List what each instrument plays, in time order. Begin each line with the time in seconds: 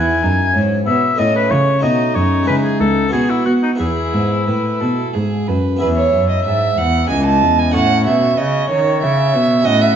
Already playing: harpsichord E2 B3 E4 G#4, cello E2, violin E4, oboe G#5
0.22 harpsichord F#2, cello F#2, violin D#4
0.54 harpsichord G#2, cello G#2, violin C#4
0.86 harpsichord B2, cello B2, violin B3, oboe E5
1.15 harpsichord A3 E4 A4, violin C#4
1.19 cello A2, harpsichord A2, oboe D#5
1.36 oboe B4
1.51 cello C#3, harpsichord C#3, oboe C#5
1.79 harpsichord A3 D#4 F#4
1.83 cello B2, harpsichord B2, violin D#4, oboe D#5
2.14 harpsichord F#2, cello F#2, oboe C#5
2.43 harpsichord G#3 C#4 E4
2.47 harpsichord C#3, cello C#3, oboe B4
2.64 oboe G#4
2.80 harpsichord C#2, cello C#2, oboe A4
3.08 harpsichord B3 D#4 F#4
3.12 harpsichord B2, cello B2, violin F#4, oboe G#4
3.30 oboe E4
3.45 harpsichord B3, cello B3, oboe F#4
3.63 oboe D#4
3.75 harpsichord B3 E4 G#4, oboe E4, violin G#4
3.79 harpsichord E2, cello E2
4.13 harpsichord G#2, cello G#2
4.46 harpsichord A2, cello A2, violin B4
4.80 harpsichord B2, cello B2, violin A4
5.13 harpsichord G#2, cello G#2, violin G#4
5.47 harpsichord F#2, cello F#2, violin B4
5.76 harpsichord B3 E4 G#4, oboe E5
5.81 harpsichord E2, cello E2, violin B4
5.96 violin C#5
6.13 harpsichord F#2, cello F#2
6.30 violin D#5
6.45 harpsichord G#2, cello G#2, violin E5
6.77 harpsichord E2, cello E2, violin F#5
7.05 harpsichord C#4 E4 G#4
7.09 harpsichord C#2, cello C#2, oboe D#5, violin G#5
7.26 violin A5
7.42 harpsichord E2, cello E2
7.59 violin G#5
7.70 harpsichord C#4 E4 A4
7.74 harpsichord A2, cello A2, oboe C#5, violin F#5
8.05 harpsichord B2, cello B2, violin E5
8.37 harpsichord C#3, cello C#3, oboe C#5, violin D#5
8.69 harpsichord D#3, cello D#3, violin C#5
9.01 harpsichord C#3, cello C#3, violin E5
9.33 harpsichord B2, cello B2
9.62 harpsichord C#4 F#4 C#5, violin D#5, oboe F#5
9.66 harpsichord A2, cello A2
9.81 violin E5